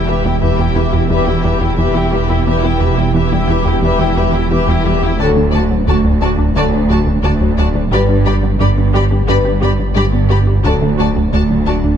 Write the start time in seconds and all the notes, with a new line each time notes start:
Already playing: E1 E2
0.07 E2 G4 B4 E5
0.23 E2 G3 E4 G4 G5
0.40 E2 E3 G4 B4 E5
0.58 E2 G3 E4 G4 G5
0.75 E2 E4 G4 B4 E5
0.92 E2 E4 G4 G5
1.09 E2 E3 G3 G4 B4 E5
1.26 E2 E4 G4 G5
1.43 E2 G3 G4 B4 E5
1.59 E2 E4 G4 G5
1.77 E2 E3 G4 B4 E5
1.95 E2 G3 E4 G4 G5
2.11 E2 G3 G4 B4 E5
2.28 E2 E4 G4 G5
2.46 E2 E3 G3 G4 B4 E5
2.63 E3 B3 E4 G4 G5
2.80 E2 G4 B4 E5
2.97 E2 G3 E4 G4 G5
3.14 E2 E3 G4 B4 E5
3.31 E2 G3 E4 G4 G5
3.48 E2 E4 G4 B4 E5
3.65 E2 E4 G4 G5
3.82 E2 E3 G3 G4 B4 E5
3.99 E2 E4 G4 G5
4.15 E2 G3 G4 B4 E5
4.32 E2 E4 G4 G5
4.50 E2 E3 G4 B4 E5
4.67 E2 G3 E4 G4 G5
4.83 E2 G3 G4 B4 E5
5.00 E2 E4 G4 G5
5.18 D1 D2 D3 F#3 F#4 A4 D5 A5
5.37 D3 A3
5.52 D2 F#4 D5 A5
5.71 D2 F#3
5.87 D2 D3 F#4 D5 A5
6.04 D2 F#3
6.21 D2 D4 F#4 D5 A5
6.39 D2 D4
6.55 D2 D3 F#3 F#4 A4 D5 A5
6.73 D2 D4
6.89 D2 F#3 F#4 D5 A5
7.06 D2
7.23 D2 D3 F#4 D5 A5
7.40 D2 F#3
7.58 D2 F#3 F#4 D5 A5
7.75 D2 D4
7.91 G1 G2 G3 G4 B4 D5 B5
8.09 G3 D4
8.26 G2 G4 D5 B5
8.43 G2 B3
8.59 G1 G2 G3 G4 D5 B5
8.78 G2 B3
8.94 G2 G4 D5 B5
9.11 G2 G4
9.27 G1 G2 G3 G4 B4 D5 B5
9.45 G2 G4
9.61 G2 B3 G4 D5 B5
9.80 G2
9.95 G1 G2 G3 G4 D5 B5
10.13 G2 B3
10.30 G2 B3 G4 D5 B5
10.47 G2 G4
10.63 D1 D2 D3 F#3 F#4 A4 D5 A5
10.82 D3 A3
10.98 D2 F#4 D5 A5
11.16 D2 F#3
11.33 D2 D3 F#4 D5 A5
11.50 D2 F#3
11.66 D2 D4 F#4 D5 A5
11.84 D2 D4